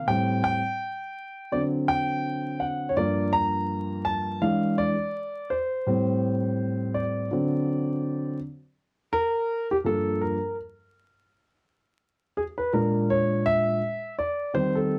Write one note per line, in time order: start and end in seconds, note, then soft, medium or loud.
0.07 0.58 A2 medium
0.07 0.58 G3 soft
0.07 0.59 C4 medium
0.07 0.42 G5 loud
0.44 1.56 G5 loud
1.52 2.93 D3 soft
1.52 2.93 F#3 soft
1.52 2.94 C4 medium
1.52 1.61 D5 medium
1.88 2.63 G5 loud
2.60 2.92 F#5 medium
2.89 2.96 C#5 medium
2.97 4.38 G2 medium
2.97 4.38 F3 soft
2.97 4.39 A#3 medium
2.97 3.35 D5 medium
3.33 4.08 A#5 loud
4.05 4.43 A5 loud
4.41 4.92 E3 medium
4.41 4.92 G#3 medium
4.41 4.93 D4 medium
4.41 4.79 F5 loud
4.78 5.53 D5 loud
5.50 6.99 C5 medium
5.86 7.27 A2 medium
5.86 7.27 G3 medium
5.86 7.28 C4 medium
6.94 8.36 D5 medium
7.31 8.36 D3 medium
7.31 8.36 F#3 soft
7.31 8.37 C4 medium
9.13 9.66 A#4 loud
9.71 9.76 G4 medium
9.84 10.35 G2 medium
9.84 10.35 F3 medium
9.84 10.35 A#3 medium
9.84 10.19 A4 medium
10.21 10.55 A#4 medium
12.37 12.42 G#4 medium
12.58 12.72 B4 medium
12.73 13.78 A#2 medium
12.73 13.78 G#3 soft
12.73 13.78 D4 medium
12.73 13.11 A#4 medium
13.10 13.44 C#5 loud
13.46 14.14 E5 loud
14.19 14.56 D5 medium
14.54 14.99 D#3 medium
14.54 14.99 G3 medium
14.54 14.99 C4 medium
14.54 14.76 C5 loud
14.75 14.99 A4 medium